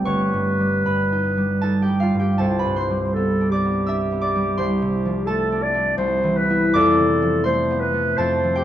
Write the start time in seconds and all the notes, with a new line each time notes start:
Already playing: G3 G4 G5
0.05 G1 B4 C#5 C#6
0.34 G2
0.60 G3
0.86 G2 B4 B5
1.12 D#4
1.38 G3
1.61 D#4 A4 A5
1.82 G4 G5
1.88 G3
2.00 F4 F5
2.14 G2
2.19 G4 G5
2.38 C2 A4 C5 A5
2.59 B4 B5
2.66 G2
2.76 C5 C6
2.90 G3
3.14 B3 A4
3.41 D4
3.50 G4 D5 D6
3.65 B3
3.86 D4 E5 E6
4.12 B3
4.21 D5 D6
4.35 G3
4.57 C2 C5 C6
4.82 C3
5.05 F3
5.26 A3 A4 A5
5.52 D4
5.63 D5
5.74 A3
5.98 C2 C5
6.24 E3
6.37 B4
6.50 B3 E4
6.74 F2 A4 D5 D6
6.99 C3
7.22 F3
7.44 A3 C5 C6
7.71 B3
7.80 B4
7.94 A3
8.17 F2 A4 C5 A5
8.44 F3
8.55 G4 G5